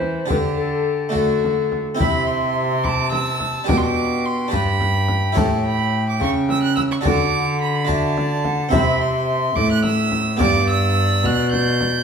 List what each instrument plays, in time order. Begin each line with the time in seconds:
Already playing: harpsichord E3 E4 G4, cello E3, violin E4, recorder C5
0.01 frame drum
0.26 harpsichord D3 D4 G4, cello D3, violin G4
0.30 recorder B4, frame drum
0.57 recorder A4
1.09 harpsichord D3 A3 D4 F#4
1.14 cello D3, violin F#4, recorder A4, frame drum
1.44 frame drum
1.72 frame drum
1.95 harpsichord C3 C4 E4 G4
1.99 cello C3, recorder E5, violin B5, frame drum
2.27 violin C6
2.83 recorder B5, violin D6, frame drum
2.88 recorder A5
3.12 violin E6, frame drum
3.40 frame drum
3.64 harpsichord B2 D4 G4 B4, recorder G5
3.69 cello B2, violin D6, frame drum
3.77 violin C6
3.83 violin D6
4.25 violin C6
4.48 harpsichord D4 G4 B4
4.52 harpsichord G2, cello G2, violin B5, frame drum
4.81 frame drum
5.09 frame drum
5.32 harpsichord A2 E4 G4 C#5
5.37 cello A2, violin A5, frame drum
5.66 violin B5
6.09 violin D6
6.20 harpsichord C#3, cello C#3, violin C#6, frame drum
6.49 violin E6, frame drum
6.63 violin F#6
6.76 violin E6, frame drum
6.92 violin C#6
7.01 cello D3, harpsichord D3 D4 F#4 D5, recorder G5
7.05 recorder F#5, violin D6, frame drum
7.61 violin B5
7.85 harpsichord D4 F#4 D5, violin A5
7.89 recorder E5, frame drum
8.17 recorder D5, frame drum
8.45 recorder F#5, frame drum
8.69 harpsichord C4 G4 E5, recorder E5, violin B5, frame drum
8.73 cello C3, harpsichord C3
9.02 violin C6
9.55 cello A2, harpsichord A2, violin D6, frame drum
9.72 violin F#6
9.84 violin E6, frame drum
10.12 frame drum
10.37 cello G2, harpsichord G2 B3 G4 D5, frame drum
10.41 recorder D5, violin D6
10.70 violin E6
11.24 cello B2, harpsichord B2, violin F#6, frame drum
11.52 violin G6, frame drum
11.81 frame drum